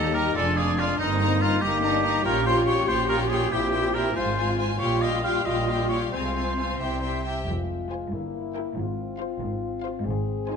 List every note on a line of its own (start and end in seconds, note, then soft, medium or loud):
0.00 0.29 D#2 medium
0.00 0.35 G3 medium
0.00 0.36 A#3 soft
0.00 0.36 D#4 soft
0.00 0.12 G4 soft
0.00 0.15 A4 medium
0.00 0.12 D#5 soft
0.00 0.15 A#5 soft
0.13 0.35 G4 soft
0.13 0.35 A#4 medium
0.13 0.35 D#5 soft
0.13 0.36 A#5 soft
0.36 0.92 F1 medium
0.36 0.92 F2 medium
0.36 1.00 G#3 medium
0.36 1.00 D4 medium
0.36 0.99 D4 soft
0.36 0.56 F4 soft
0.36 0.59 A4 medium
0.36 0.55 D5 soft
0.36 0.56 G#5 soft
0.56 0.76 F4 soft
0.56 0.80 G#4 medium
0.56 0.77 D5 soft
0.56 0.76 G#5 soft
0.77 0.98 F4 soft
0.77 0.98 F4 medium
0.77 0.99 D5 soft
0.77 0.98 G#5 soft
0.99 1.55 G1 medium
0.99 1.55 G2 medium
0.99 1.61 A#3 soft
0.99 1.63 C4 medium
0.99 1.43 D#4 medium
0.99 1.62 D#4 medium
0.99 1.18 D#4 soft
0.99 1.18 D#5 medium
0.99 1.19 A#5 soft
1.19 1.40 D#4 soft
1.19 1.40 D#5 soft
1.19 1.41 A#5 soft
1.42 1.61 D#4 soft
1.42 1.63 F4 medium
1.42 1.61 D#5 soft
1.42 1.60 A#5 soft
1.61 2.18 G1 medium
1.61 2.18 G2 medium
1.61 1.83 A#3 medium
1.61 2.24 A#3 medium
1.61 1.82 D#4 soft
1.61 2.25 D#4 medium
1.61 2.25 G4 medium
1.61 1.82 D#5 soft
1.61 1.82 A#5 soft
1.83 2.04 D4 medium
1.83 2.03 D#4 medium
1.83 2.03 D#5 medium
1.83 2.04 A#5 soft
2.04 2.25 D#4 medium
2.04 2.26 D#4 medium
2.04 2.25 D#5 soft
2.04 2.25 A#5 medium
2.25 2.81 A#1 medium
2.25 2.81 A#2 medium
2.25 3.50 C#4 soft
2.25 2.45 F4 medium
2.25 3.52 F4 soft
2.25 4.12 G4 medium
2.25 2.46 A#4 medium
2.25 2.45 C#5 medium
2.25 2.46 G5 medium
2.46 2.67 F4 soft
2.46 2.56 C5 medium
2.46 2.67 C#5 soft
2.46 2.65 G5 soft
2.67 2.88 F4 soft
2.67 2.87 C#5 medium
2.67 2.88 C#5 soft
2.67 2.87 G5 soft
2.88 3.45 A#1 medium
2.88 3.45 A#2 medium
2.88 3.08 F4 soft
2.88 3.09 C5 medium
2.88 3.08 C#5 soft
2.88 3.07 G5 soft
3.08 3.29 F4 medium
3.08 3.19 A#4 medium
3.08 3.29 C#5 soft
3.08 3.30 G5 soft
3.29 3.51 F4 soft
3.29 3.53 G#4 medium
3.29 3.51 C#5 soft
3.29 3.51 G5 soft
3.52 4.09 A#1 medium
3.52 4.09 A#2 medium
3.52 4.15 C4 soft
3.52 3.72 E4 soft
3.52 4.16 E4 soft
3.52 3.96 G4 medium
3.52 3.72 C5 soft
3.52 3.71 G5 soft
3.72 3.93 E4 soft
3.72 3.93 C5 soft
3.72 3.93 G5 soft
3.94 4.16 E4 soft
3.94 4.15 A#4 medium
3.94 4.16 C5 soft
3.94 4.15 G5 soft
4.15 4.73 G#1 soft
4.15 4.73 G#2 medium
4.15 4.64 C4 soft
4.15 4.64 F4 medium
4.15 4.79 F4 medium
4.15 4.37 F4 soft
4.15 4.57 C5 medium
4.15 4.37 C5 soft
4.15 4.37 G#5 soft
4.38 4.58 F4 soft
4.38 4.58 C5 soft
4.38 4.58 G#5 soft
4.59 4.80 F4 soft
4.59 4.80 C5 soft
4.59 4.80 G#5 soft
4.79 5.38 A#1 medium
4.79 5.38 A#2 soft
4.79 6.13 G3 soft
4.79 6.10 F4 soft
4.79 6.10 F4 medium
4.79 5.01 G4 soft
4.79 5.03 C#5 medium
4.79 5.01 F5 soft
4.79 5.01 G5 soft
5.02 5.23 G4 soft
5.02 5.23 D#5 medium
5.02 5.23 F5 soft
5.02 5.24 G5 soft
5.24 5.45 G4 soft
5.24 5.47 F5 medium
5.24 5.45 F5 soft
5.24 5.46 G5 soft
5.45 6.05 A#1 soft
5.45 6.05 A#2 soft
5.45 5.67 G4 soft
5.45 5.89 D#5 medium
5.45 5.68 F5 soft
5.45 5.68 G5 soft
5.69 5.89 G4 soft
5.69 5.89 F5 soft
5.69 5.90 G5 soft
5.89 6.12 G4 soft
5.89 6.00 C#5 medium
5.89 6.12 F5 soft
5.89 6.13 G5 soft
6.13 6.73 C2 soft
6.13 6.73 C3 soft
6.13 6.81 G#3 soft
6.13 7.12 C4 soft
6.13 6.35 F4 soft
6.13 6.80 F4 soft
6.13 7.23 C5 soft
6.13 6.35 F5 soft
6.13 6.34 G#5 soft
6.35 6.57 F4 soft
6.35 6.58 F5 soft
6.35 6.57 G#5 soft
6.58 6.80 F4 soft
6.58 6.80 F5 soft
6.58 6.80 G#5 soft
6.79 7.40 C2 soft
6.79 7.40 C3 soft
6.79 7.25 G3 soft
6.79 7.26 E4 soft
6.79 7.01 G4 soft
6.79 7.01 E5 soft
6.79 7.02 G5 soft
7.03 7.23 G4 soft
7.03 7.23 E5 soft
7.03 7.24 G5 soft
7.24 7.47 G4 soft
7.24 7.47 E5 soft
7.24 7.47 G5 soft
7.48 8.00 F1 medium
7.48 8.00 F2 medium
7.48 8.10 G#3 soft
7.48 8.10 F4 soft
7.91 8.08 F4 soft
7.91 8.07 C5 soft
7.91 8.08 G#5 soft
8.12 8.64 G1 soft
8.12 8.64 G2 medium
8.12 8.77 A#3 soft
8.12 8.77 E4 soft
8.55 8.72 E4 soft
8.55 8.71 A#4 medium
8.55 8.71 G5 soft
8.77 9.28 G#1 medium
8.77 9.28 G#2 medium
8.77 10.56 C4 soft
8.77 10.06 F4 soft
9.19 9.36 F4 soft
9.19 9.35 C5 soft
9.19 9.35 F5 soft
9.41 9.92 G#1 medium
9.41 9.92 G#2 medium
9.83 10.01 F4 soft
9.83 10.00 C5 medium
9.83 10.00 F5 medium
10.05 10.56 G#1 medium
10.05 10.56 G#2 medium
10.05 10.56 G#4 soft
10.48 10.56 D#4 medium
10.48 10.56 C5 medium
10.48 10.56 G#5 soft